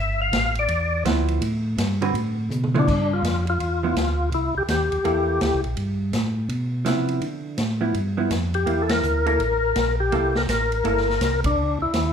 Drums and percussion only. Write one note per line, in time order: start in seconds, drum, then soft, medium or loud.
0.33 snare medium
0.33 hi-hat pedal soft
0.33 ride medium
0.55 ride soft
0.68 ride medium
1.05 snare medium
1.05 hi-hat pedal medium
1.05 ride medium
1.28 ride soft
1.42 ride medium
1.78 snare medium
1.78 hi-hat pedal medium
1.78 ride medium
2.02 ride soft
2.15 ride medium
2.51 hi-hat pedal soft
2.51 mid tom soft
2.63 mid tom medium
2.75 mid tom medium
2.88 kick medium
2.88 crash medium
3.24 snare medium
3.24 hi-hat pedal soft
3.24 ride medium
3.47 ride soft
3.60 ride soft
3.96 snare medium
3.96 hi-hat pedal medium
3.96 ride medium
4.32 ride soft
4.68 snare medium
4.68 hi-hat pedal medium
4.68 ride medium
4.92 ride soft
5.05 ride medium
5.41 snare medium
5.41 hi-hat pedal soft
5.41 ride medium
5.64 ride soft
5.77 ride medium
6.13 snare medium
6.13 hi-hat pedal medium
6.13 ride medium
6.49 ride medium
6.86 snare medium
6.86 hi-hat pedal medium
6.86 ride medium
7.08 ride soft
7.21 ride medium
7.58 snare medium
7.58 hi-hat pedal medium
7.58 ride medium
7.94 ride medium
8.31 snare medium
8.31 hi-hat pedal medium
8.31 ride medium
8.54 ride soft
8.67 ride medium
8.89 snare medium
8.89 ride medium
9.03 hi-hat pedal medium
9.26 ride soft
9.40 ride medium
9.76 snare medium
9.76 hi-hat pedal soft
9.76 ride medium
10.12 ride soft
10.35 snare medium
10.49 snare medium
10.49 hi-hat pedal medium
10.49 ride medium
10.72 ride soft
10.85 ride medium
10.97 snare soft
11.10 snare soft
11.21 snare medium
11.21 hi-hat pedal medium
11.21 ride medium
11.44 kick medium
11.44 ride medium
11.94 snare medium
11.94 hi-hat pedal soft
11.94 ride medium